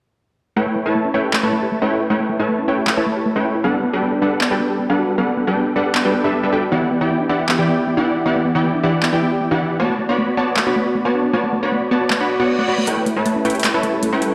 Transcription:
0.56 A3 E4 B4 C#5 G5
0.66 A3
0.76 A3
0.86 A3 E4 B4 C#5 A5
0.95 A3
1.05 C#4
1.14 A3 C#4 E4 B4 C#5 G5
1.24 G4
1.33 A3, clap
1.43 A3 E4 B4 C#5 A5
1.53 A3
1.63 G4
1.72 A3
1.82 A3 C#4 E4 B4 C#5 G5
1.91 E4
2.01 E4
2.10 A3 E4 B4 C#5 G5
2.20 A3
2.29 A3
2.39 A3 E4 B4 C#5 A5
2.49 A3
2.59 C#4
2.68 A3 C#4 E4 B4 C#5 G5
2.78 G4
2.87 A3, clap
2.97 A3 E4 B4 C#5 A5
3.06 A3
3.16 G4
3.26 A3
3.36 A3 C#4 E4 B4 C#5 G5
3.45 E4
3.55 E4
3.64 G3 B3 D4 A4 B4 F#5
3.74 B3
3.83 B3
3.93 G3 D4 F#4 A4 B4 G5
4.03 B3
4.13 D4
4.22 G3 D4 A4 B4 F#5
4.32 G4
4.41 B3, clap
4.51 G3 D4 F#4 A4 B4 G5
4.60 B3
4.70 G4
4.79 B3
4.89 G3 D4 A4 B4 F#5
4.99 F#4
5.09 F#4
5.18 G3 B3 D4 A4 B4 F#5
5.28 B3
5.37 B3
5.47 G3 D4 F#4 A4 B4 G5
5.56 B3
5.66 D4
5.76 G3 D4 A4 B4 F#5
5.86 G4
5.95 B3, clap
6.05 G3 D4 F#4 A4 B4 G5
6.14 B3
6.24 G3 D4 G4 A4 B4 E5
6.33 B3
6.43 G3 D4 A4 B4 E5
6.53 G3 D4 F#4 A4 B4 G5
6.63 F#4
6.72 E3 B3 E4 G4 D5 F#5
6.82 B3
6.91 B3
7.01 E3 E4 G4 D5 G5
7.10 B3
7.20 D4
7.29 E3 D4 E4 G4 D5 F#5
7.40 G4
7.49 B3, clap
7.59 E3 E4 G4 D5 G5
7.68 B3
7.78 G4
7.87 B3
7.97 E3 D4 E4 G4 D5 F#5
8.07 E4
8.17 E4
8.26 E3 B3 E4 G4 D5 F#5
8.36 B3
8.45 B3
8.55 E3 E4 G4 D5 G5
8.64 B3
8.74 D4
8.83 E3 D4 E4 G4 D5 F#5
8.94 G4
9.03 B3, clap
9.13 E3 E4 G4 D5 G5
9.22 B3
9.32 G4
9.41 B3
9.51 E3 D4 E4 G4 D5 F#5
9.60 E4
9.71 E4
9.80 A3 B3 F#4 C#5 D5 A5
9.90 A3
9.99 A3
10.09 B3 D4 F#4 C#5 D5 B5
10.18 A3
10.28 B3
10.37 B3 F#4 C#5 D5 A5
10.47 F#4
10.57 A3, clap
10.67 B3 D4 F#4 C#5 D5 B5
10.76 A3
10.86 F#4
10.95 A3
11.05 B3 F#4 C#5 D5 A5
11.14 D4
11.24 D4
11.33 A3 B3 F#4 C#5 D5 A5
11.44 A3
11.53 A3
11.63 B3 D4 F#4 C#5 D5 B5
11.72 A3
11.82 B3
11.91 B3 F#4 C#5 D5 A5
12.01 F#4
12.10 A3, clap, reverse cymbal
12.20 B3 D4 F#4 C#5 D5 B5
12.30 D5
12.40 B3 F#4 B4 C#5 D5 F#5
12.49 F#4
12.59 A3 B3 F#4 C#5 D5 F#5
12.68 B3 F#4 C#5 D5 B5
12.78 A3
12.87 G3 A3 C#4 E4 A4 B4 C#5 G5, closed hi-hat
12.97 A3
13.06 A3, closed hi-hat
13.16 A3 E4 B4 C#5 A5
13.26 A3, closed hi-hat
13.36 C#4
13.45 A3 C#4 E4 B4 C#5 G5, closed hi-hat
13.50 closed hi-hat
13.55 G4, closed hi-hat
13.60 closed hi-hat
13.64 A3, clap, closed hi-hat
13.74 A3 E4 B4 C#5 A5
13.83 A3, closed hi-hat
13.93 G4
14.03 A3, closed hi-hat
14.13 A3 C#4 E4 B4 C#5 G5
14.22 E4, closed hi-hat

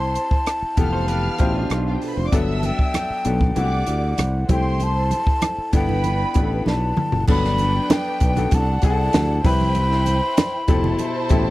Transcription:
Already playing: C2 C4 E4 G4 C5 A5 C6
0.15 closed hi-hat
0.31 kick
0.46 cross-stick, closed hi-hat
0.62 muted fingered electric bass stroke
0.77 F1 E3 B3 G4 A4 F5 F6, kick, closed hi-hat
0.93 A4 C5
1.08 G4 B4, closed hi-hat
1.38 A1 B2 E4 F4 G4 C5, kick, closed hi-hat
1.55 D4 F4
1.70 B1, cross-stick, closed hi-hat
1.87 F4 F5
1.94 G4 G5
2.02 A4 A5, open hi-hat
2.09 B4 B5
2.17 F1 C5 C6
2.26 D5 D6
2.32 G1 F#3 B3 D4 A4 E5 E6, kick, closed hi-hat, muted conga
2.58 A5
2.63 G5, closed hi-hat, muted conga
2.79 kick
2.94 cross-stick, closed hi-hat, high conga
3.10 muted fingered electric bass stroke
3.25 B1 F#3 B3 D4 A4, closed hi-hat
3.40 kick, low conga
3.55 C2 A3 D4 E4 F#4 D5 F#5 D6, closed hi-hat, muted conga
3.64 G4
3.86 D2, closed hi-hat
4.18 C2, cross-stick, closed hi-hat, high conga
4.49 C2 A3 C4 E4 G4 C5 G5 C6, kick, closed hi-hat, high conga
4.80 A5, closed hi-hat, muted conga
5.11 closed hi-hat, muted conga
5.27 kick
5.42 cross-stick, closed hi-hat, high conga
5.58 muted fingered electric bass stroke
5.73 G1 B3 D4 E4 A4 B4 G5 B5, kick, closed hi-hat
5.89 low conga
6.04 closed hi-hat, muted conga
6.34 A1 B3 D4 E4 G4, kick, closed hi-hat, low conga
6.43 A4
6.66 B1 A5, snare, high conga
6.97 mid tom, high conga
7.12 F#1, floor tom
7.28 G1 F#3 B3 D4 A4 B4 G5 B5, kick, crash, muted conga
7.45 snare
7.58 closed hi-hat, muted conga
7.90 G5, snare, closed hi-hat, high conga
8.20 B1, kick, closed hi-hat
8.36 B3 D4 F#4 A4, closed hi-hat, low conga
8.51 C2 D4 A4 F#5 A5, kick, closed hi-hat, muted conga
8.82 C2 D4 E4 G4 G#4 A5, kick, closed hi-hat
8.90 A4
9.13 D2, snare, closed hi-hat, high conga
9.44 C2 C4 E4 G4 B4 C5 G5 B5, kick, open hi-hat, high conga
9.61 high conga
9.75 closed hi-hat, muted conga
9.91 snare
10.06 closed hi-hat, muted conga
10.37 snare, closed hi-hat, high conga
10.68 F1 B2 E4 G4 A4 C5 A5, kick, closed hi-hat
10.84 low conga
10.99 closed hi-hat, muted conga
11.29 A1 B2 E4 G4 A4, kick, closed hi-hat, muted conga, low conga

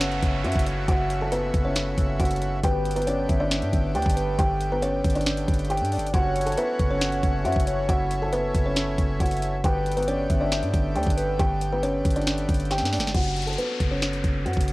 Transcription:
Already playing: F#1 C#3 A3 C#4 E4 F#4 C#5 F#5, downlifter
0.01 finger snap, snare, closed hi-hat
0.12 closed hi-hat
0.23 F#1, kick, closed hi-hat
0.44 F#2 F#4 E5 F#5, closed hi-hat
0.52 F#1, kick, closed hi-hat
0.59 closed hi-hat
0.66 C#5, closed hi-hat
0.88 F#1 F#4 F#5, kick, closed hi-hat
1.10 closed hi-hat
1.21 A4 A5
1.32 B3 B4, closed hi-hat
1.54 F#1, kick, closed hi-hat
1.65 C#4 C#5
1.76 finger snap, snare, closed hi-hat
1.98 F#1, kick, closed hi-hat
2.20 F#1 F#4 F#5, kick, closed hi-hat
2.25 closed hi-hat
2.31 closed hi-hat
2.36 closed hi-hat
2.42 closed hi-hat
2.63 G1 D3 B3 G4 B4 G5, kick, closed hi-hat
2.85 closed hi-hat
2.91 closed hi-hat
2.96 B3 B4, closed hi-hat
3.02 closed hi-hat
3.07 C#4 C#5 D5, closed hi-hat
3.29 G1 E5, kick, closed hi-hat
3.40 D4 D5
3.51 finger snap, snare, closed hi-hat
3.62 G2, closed hi-hat
3.73 G1, kick, closed hi-hat
3.95 D2 G4 D5 G5, closed hi-hat
4.02 G1, kick, closed hi-hat
4.09 closed hi-hat
4.16 B4, closed hi-hat
4.39 G1 G4 G5, kick, closed hi-hat
4.61 closed hi-hat
4.72 B3 B4
4.82 C#4 C#5, closed hi-hat
5.04 G1, kick, closed hi-hat
5.10 closed hi-hat
5.15 D4 D5, closed hi-hat
5.21 closed hi-hat
5.26 finger snap, snare, closed hi-hat
5.37 closed hi-hat
5.48 G1, kick, closed hi-hat
5.54 closed hi-hat
5.59 closed hi-hat
5.65 closed hi-hat
5.70 G4 G5, closed hi-hat
5.77 G2, closed hi-hat
5.85 closed hi-hat
5.92 D5, closed hi-hat, open hi-hat
5.97 G1, closed hi-hat
6.07 closed hi-hat
6.13 F#1 E3 A3 C#4 F#4 C#5 F#5, kick, closed hi-hat
6.36 closed hi-hat
6.41 closed hi-hat
6.46 A4 A5, closed hi-hat
6.52 closed hi-hat
6.57 B3 B4 E5, closed hi-hat
6.79 F#1 F#5, kick, closed hi-hat
6.91 C#4 C#5
7.01 finger snap, snare, closed hi-hat
7.12 closed hi-hat
7.23 F#1, kick, closed hi-hat
7.45 F#2 F#4 E5 F#5, closed hi-hat
7.52 F#1, kick, closed hi-hat
7.60 closed hi-hat
7.67 C#5, closed hi-hat
7.89 F#1 E4 F#4 F#5, kick, closed hi-hat
8.11 closed hi-hat
8.22 A4 A5
8.33 B3 B4, closed hi-hat
8.55 F#1, kick, closed hi-hat
8.66 C#4 C#5
8.76 finger snap, snare, closed hi-hat
8.98 F#1, kick, closed hi-hat
9.20 F#1 F#4 F#5, kick, closed hi-hat
9.26 closed hi-hat
9.31 closed hi-hat
9.37 closed hi-hat
9.42 closed hi-hat
9.64 G1 D3 A3 B3 G4 B4 G5, kick, closed hi-hat
9.86 closed hi-hat
9.92 closed hi-hat
9.97 B3 B4, closed hi-hat
10.03 closed hi-hat
10.08 C#4 C#5 D5, closed hi-hat
10.30 G1 E5, kick, closed hi-hat
10.41 D4 D5
10.52 finger snap, snare, closed hi-hat
10.63 G2, closed hi-hat
10.74 G1, kick, closed hi-hat
10.95 D2 G4 D5 G5, closed hi-hat
11.03 G1, kick, closed hi-hat
11.10 closed hi-hat
11.17 B4, closed hi-hat
11.39 G1 G4 G5, kick, closed hi-hat
11.61 closed hi-hat
11.73 B3 B4
11.83 C#4 C#5, closed hi-hat
12.05 G1, kick, closed hi-hat
12.11 closed hi-hat
12.16 D4 D5, closed hi-hat
12.22 closed hi-hat
12.27 finger snap, snare, closed hi-hat
12.38 closed hi-hat
12.49 G1, kick, closed hi-hat
12.54 closed hi-hat
12.60 closed hi-hat
12.65 closed hi-hat
12.71 G4 G5, snare, closed hi-hat
12.78 G2, snare, closed hi-hat
12.85 snare, closed hi-hat
12.93 D5, snare, closed hi-hat, open hi-hat
12.98 G1, snare, closed hi-hat
13.07 snare, closed hi-hat
13.14 F#1 F#4 F#5, kick, closed hi-hat, crash, downlifter
13.36 closed hi-hat
13.42 closed hi-hat
13.47 A4 A5, closed hi-hat
13.53 closed hi-hat
13.58 B3 B4, closed hi-hat
13.80 F#1, kick, closed hi-hat
13.91 C#4 C#5
14.02 finger snap, snare, closed hi-hat
14.13 closed hi-hat
14.24 F#1, kick, closed hi-hat
14.45 F#2 F#4 F#5, closed hi-hat
14.53 F#1, kick, closed hi-hat
14.61 closed hi-hat
14.68 closed hi-hat

